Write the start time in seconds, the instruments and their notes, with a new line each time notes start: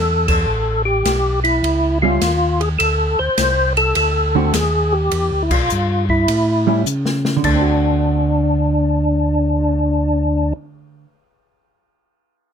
Already playing: tonewheel organ E2 A4
0.28 tonewheel organ A4, kick, crash
0.47 tonewheel organ A1
0.85 tonewheel organ G4
1.05 tonewheel organ B1, snare, hi-hat pedal, ride
1.44 tonewheel organ E4, ride
1.63 tonewheel organ C#2, ride
2.02 hollow-body jazz guitar G3 C#4 E4, tonewheel organ F4
2.21 tonewheel organ D#2, snare, hi-hat pedal, ride
2.60 tonewheel organ G#4, ride
2.79 tonewheel organ D2 A4, ride
3.19 tonewheel organ D2 C5
3.38 tonewheel organ C2, snare, hi-hat pedal, ride
3.77 tonewheel organ A4, ride
3.95 tonewheel organ D2 A4, ride
4.35 hollow-body jazz guitar D3 A3 C4 F#4
4.54 tonewheel organ D#2 G#4, snare, hi-hat pedal, ride
4.92 tonewheel organ G4
5.11 tonewheel organ E2, ride
5.32 tonewheel organ D2
5.42 tonewheel organ E4
5.51 tonewheel organ B1 F4, kick, crash
5.70 tonewheel organ G2, hi-hat pedal
6.09 tonewheel organ E4, kick
6.28 tonewheel organ A2, ride
6.67 hollow-body jazz guitar G3 C#4 E4
6.86 tonewheel organ C#3, hi-hat pedal
7.06 snare
7.25 snare
7.37 hollow-body jazz guitar D3
7.44 tonewheel organ D2 D4, hollow-body jazz guitar A3, kick, crash
7.55 hollow-body jazz guitar C4
7.61 hollow-body jazz guitar F#4
7.84 cymbal swell